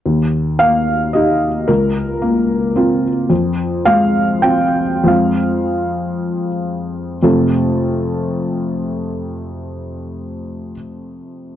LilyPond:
<<
  \new Staff \with { instrumentName = "Felt piano" } { \time 3/4 \key ees \mixolydian \tempo 4 = 88 r4 f''4 ees''4 | bes'2~ bes'8 r8 | r4 f''4 g''4 | f''2 r4 |
<f, c a c' f' a'>2.~ | <f, c a c' f' a'>2. | }
  \new Staff \with { instrumentName = "Felt piano" } { \time 3/4 \key ees \mixolydian ees,4 bes4 <ees' g'>4 | des,4 bes4 <c' f'>4 | f,4 aes4 <c' f'>4 | <f, aes c' f'>2. |
r2. | r2. | }
>>